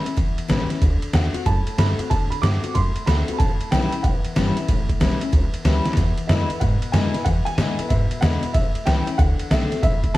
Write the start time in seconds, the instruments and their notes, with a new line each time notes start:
Already playing: steel-string acoustic guitar A2, upright piano E5
0.05 steel-string acoustic guitar C#4 E4, muted upright bass stroke, ride
0.17 upright bass G1, steel-string acoustic guitar E2, kick, ride
0.38 muted upright bass stroke, ride
0.48 upright bass A1, steel-string acoustic guitar E3 G3 C#4 E4, snare, ride
0.70 steel-string acoustic guitar C#4 E4, snare, ride
0.82 upright bass D2, steel-string acoustic guitar D3, kick, ride
1.02 muted upright bass stroke, ride
1.13 upright bass E2, steel-string acoustic guitar D3 A3 C4 F#4, upright piano F#5, snare, ride
1.34 steel-string acoustic guitar C4 F#4, muted upright bass stroke, ride
1.46 upright bass F#2, steel-string acoustic guitar A2, upright piano A5, kick, ride
1.67 muted upright bass stroke, ride
1.78 upright bass G2, steel-string acoustic guitar D3 A3 C4 F#4, upright piano B5, snare, ride
1.99 steel-string acoustic guitar C4 F#4, muted upright bass stroke, ride
2.10 upright bass A2, steel-string acoustic guitar D3, upright piano A5, kick, ride
2.30 upright piano B5, muted upright bass stroke, ride
2.42 upright bass G2, steel-string acoustic guitar D3 A3 C4 F#4, upright piano D6, snare, ride
2.63 steel-string acoustic guitar C4 F#4, muted upright bass stroke, ride
2.74 upright bass F#2, steel-string acoustic guitar A2, upright piano C6, kick, ride
2.96 muted upright bass stroke, ride
3.06 upright bass D2, steel-string acoustic guitar D3 A3 C4 F#4, upright piano B5, snare, ride
3.28 steel-string acoustic guitar C4 F#4, muted upright bass stroke, ride
3.33 upright piano B5
3.38 upright bass A1, steel-string acoustic guitar A2, upright piano A5, kick, ride
3.61 muted upright bass stroke, ride
3.71 upright bass B1, steel-string acoustic guitar E3 G3 C#4 E4, upright piano G5, snare, ride
3.92 steel-string acoustic guitar C#4 E4, muted upright bass stroke, ride
4.03 upright bass A1, steel-string acoustic guitar E2, upright piano F#5, kick, ride
4.25 muted upright bass stroke, ride
4.36 upright bass G1, steel-string acoustic guitar E3 G3 C#4 E4, snare, ride
4.57 steel-string acoustic guitar C#4 E4, muted upright bass stroke, ride
4.68 upright bass A1, steel-string acoustic guitar A2, kick, ride
4.89 muted upright bass stroke, kick, ride
5.00 upright bass B1, steel-string acoustic guitar E3 G3 C#4 E4, snare, ride
5.20 steel-string acoustic guitar C#4 E4, ride
5.32 upright bass C#2, steel-string acoustic guitar E2, kick, ride
5.53 muted upright bass stroke, ride
5.65 upright bass D2, steel-string acoustic guitar E3 G3 C#4 E4, snare, ride
5.85 steel-string acoustic guitar C#4 E4, snare, ride
5.93 upright bass E2, snare, ride
5.97 steel-string acoustic guitar E2, kick
6.17 muted upright bass stroke, ride
6.27 upright bass F#2, steel-string acoustic guitar D3 G#3 B3 E4, upright piano E5, snare, ride
6.50 steel-string acoustic guitar B3 E4, muted upright bass stroke, ride
6.60 upright bass G#2, steel-string acoustic guitar B2, upright piano F#5, kick, ride
6.82 ride
6.92 upright bass F#2, steel-string acoustic guitar D3 G#3 B3 E4, upright piano G#5, snare, ride
7.13 steel-string acoustic guitar B3 E4, muted upright bass stroke, snare, ride
7.25 steel-string acoustic guitar E2, upright bass E2, upright piano F#5, kick, ride
7.45 upright piano G#5, muted upright bass stroke, ride
7.58 upright bass A2, steel-string acoustic guitar D3 G#3 B3 E4, snare, ride
7.79 steel-string acoustic guitar B3 E4, muted upright bass stroke, ride
7.89 upright bass G#2, steel-string acoustic guitar B2, upright piano E5, kick, ride
8.11 muted upright bass stroke, ride
8.21 upright bass E2, steel-string acoustic guitar D3 G#3 B3 E4, upright piano F#5, snare, ride
8.43 steel-string acoustic guitar B3 E4, muted upright bass stroke, ride
8.53 upright bass A1, steel-string acoustic guitar A2, upright piano E5, kick, ride
8.75 muted upright bass stroke, ride
8.85 upright bass C#2, steel-string acoustic guitar E3 G3 C#4 E4, upright piano G5, snare, ride
9.07 steel-string acoustic guitar C#4 E4, ride
9.18 upright bass D2, steel-string acoustic guitar D3, upright piano F#5, kick, ride
9.39 ride
9.51 upright bass B1, steel-string acoustic guitar D3 A3 C4 F#4, upright piano E5, snare, ride
9.71 steel-string acoustic guitar C4 F#4, snare, ride
9.82 upright bass A1, steel-string acoustic guitar A2, upright piano E5, kick, ride
10.04 muted upright bass stroke, kick, ride
10.14 upright piano A5